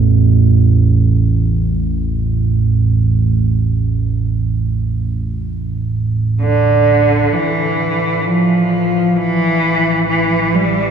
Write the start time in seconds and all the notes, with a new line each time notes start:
Already playing: A1 E2
6.41 D3
7.30 A1 E3
8.24 F3
9.16 E3
10.08 E3
10.54 G3